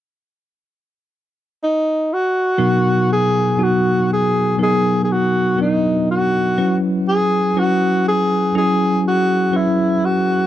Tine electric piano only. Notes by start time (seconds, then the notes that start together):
2.58 B2 F#3 B3 D#4 A#4
3.58 F#3 B3 D#4 F#4
4.58 F#3 B3 D#4 A#4
5.58 F#3 B3 D4 A#4
5.65 D#4
6.58 F#3 C#4 E4 B4
7.56 F#3 C#4 E4 B4
8.55 F#3 C#4 E4 G#4
9.53 F#3 C#4 E4 B4